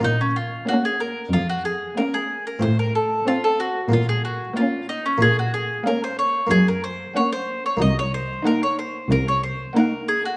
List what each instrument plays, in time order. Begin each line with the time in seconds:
0.00 harpsichord A#3 C#4 F4
0.04 harpsichord A#2, cello section A#2, mandolin D#4
0.21 mandolin C#4
0.36 mandolin F4
0.68 viola section A#3, violin section C#4 F5, mandolin F#4
0.85 mandolin G#4
1.00 mandolin A#4
1.33 cello section F2, harpsichord F2, mandolin F4
1.49 mandolin F#4
1.65 mandolin G#4
1.97 viola section A#3, violin section C#4 F5, mandolin A#4
2.14 mandolin G#4
2.47 mandolin A#4
2.59 harpsichord C4 F4, mandolin C5
2.63 cello section A2, harpsichord A2
2.79 mandolin A#4
2.95 mandolin A4
3.27 violin section C4 F5, viola section C4, mandolin F4
3.44 mandolin A4
3.60 mandolin F#4
3.89 cello section A#2, harpsichord A#3 C#4 F4
3.93 harpsichord A#2, mandolin F4
4.09 mandolin G#4
4.25 mandolin F#4
4.57 viola section A#3, violin section C#4 F5, mandolin F4
4.89 mandolin D#4
5.06 mandolin C#4
5.18 cello section A#2, harpsichord A#3 C#4 F4
5.22 harpsichord A#2, mandolin G#4
5.39 mandolin F#4
5.54 mandolin G#4
5.87 viola section A#3, violin section C#4 F5, mandolin A#4
6.04 mandolin C5
6.19 mandolin C#5
6.47 harpsichord A#3 C#4 F#4, mandolin G#4
6.51 harpsichord F#2, cello section F#2
6.68 mandolin A#4
6.84 mandolin C5
7.16 viola section A#3, violin section C#4 F#5, mandolin C#5
7.32 mandolin C5
7.66 mandolin C#5
7.77 harpsichord A#3 D#4 F#4
7.81 cello section C2, harpsichord C2, mandolin D#5
7.99 mandolin C#5
8.14 mandolin C5
8.46 viola section A#3, violin section D#4 F#5, mandolin A#4
8.63 mandolin C#5
8.79 mandolin C5
9.11 harpsichord C2, cello section C2, mandolin A#4
9.28 mandolin C#5
9.43 mandolin C5
9.76 viola section A#3, violin section D#4 F#5, mandolin A#4
10.08 mandolin G#4
10.25 mandolin F#4